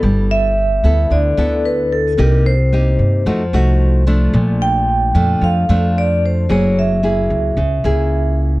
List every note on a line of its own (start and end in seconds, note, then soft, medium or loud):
0.00 0.80 G1 medium
0.00 1.08 G3 medium
0.00 0.53 B3 medium
0.00 0.53 E4 medium
0.00 0.53 A4 medium
0.31 1.14 E5 medium
0.84 1.09 D2 medium
0.84 1.34 B3 soft
0.84 1.34 E4 medium
0.84 1.34 A4 soft
1.10 1.36 D2 medium
1.10 2.16 D3 soft
1.10 1.67 D5 medium
1.37 2.14 D2 medium
1.37 2.14 B3 medium
1.37 2.14 E4 medium
1.37 2.15 A4 medium
1.65 1.93 B4 medium
1.93 2.20 A4 medium
2.18 2.95 C2 medium
2.18 3.23 C3 medium
2.18 2.53 A#3 medium
2.18 2.53 D#4 medium
2.18 2.53 G4 medium
2.18 2.46 A#4 medium
2.46 4.03 C5 medium
2.72 3.24 A#3 soft
2.72 3.24 D#4 soft
2.72 3.25 G4 soft
2.99 3.24 G2 medium
3.26 3.51 F2 medium
3.26 4.06 F3 soft
3.26 3.42 A3 medium
3.26 3.42 D#4 medium
3.26 3.42 F#4 soft
3.53 4.30 C2 medium
3.53 4.03 A3 medium
3.53 4.03 D#4 medium
3.53 4.03 F#4 medium
4.07 5.10 F3 medium
4.07 5.11 A3 medium
4.07 5.11 D4 medium
4.33 5.11 A#1 medium
4.33 5.39 A#2 medium
4.62 5.45 G5 loud
5.15 5.40 F2 medium
5.15 5.64 F3 medium
5.15 5.65 A3 soft
5.15 5.65 D4 medium
5.41 5.67 F2 medium
5.41 6.47 F2 soft
5.41 5.98 F5 medium
5.69 6.46 F2 medium
5.69 6.45 F3 medium
5.69 6.46 A3 medium
5.69 6.46 D4 medium
5.98 6.22 D5 medium
6.26 6.52 C5 medium
6.49 7.26 F#1 medium
6.49 7.55 F#3 medium
6.49 6.99 A#3 medium
6.49 6.99 E4 medium
6.49 7.00 G#4 medium
6.49 6.79 C#5 medium
6.79 8.35 E5 medium
7.03 7.57 A#3 soft
7.03 7.57 E4 soft
7.03 7.57 G#4 medium
7.30 7.55 C#2 medium
7.57 7.82 C#2 medium
7.57 8.60 C#3 soft
7.84 8.60 C#2 medium
7.84 8.60 A#3 soft
7.84 8.60 E4 medium
7.84 8.60 G#4 medium